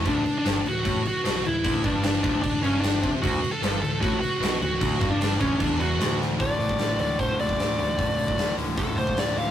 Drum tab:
CC |x-x-x-x-x-x-x-x-|x-x-x-x-x-x-x-x-|x-x-x-x-x-x-x-x-|x-x-x-x-x-x-x---|
HH |----------------|----------------|----------------|----------------|
SD |----o-------o---|----o-------o---|----o-------o---|----o-------o-o-|
BD |o-------o-------|o-o---o-o-----o-|o-------o-------|o-o---o-o-------|

CC |----------------|----------------|
HH |o-o-o-o-o-o-o-o-|o-o-o-o-o-o-o-o-|
SD |----o-------o---|----o-------o---|
BD |o--o----o--o----|o--o----o--o----|